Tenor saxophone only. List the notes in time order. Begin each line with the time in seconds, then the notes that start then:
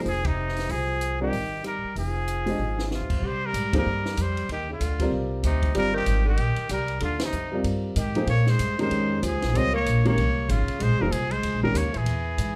0.05 F3
0.24 C3
0.71 F3
1.21 D#3
1.64 G3
1.96 F3
2.91 C3
3.23 G3
3.44 G3
3.74 G3
4.18 G3
4.52 D#3
4.70 D3
5.45 C3
5.74 G3
5.94 D#3
6.25 D#3
6.70 G3
7.01 D3
7.21 C3
7.96 D#3
8.28 A#3
8.47 G#3
8.78 G#3
9.21 F3
9.54 C4
9.73 A#3
10.05 A#3
10.49 C#3
10.80 G#3
10.99 G3
11.12 F3
11.32 G#3
11.63 G3
11.74 A#3
11.93 E3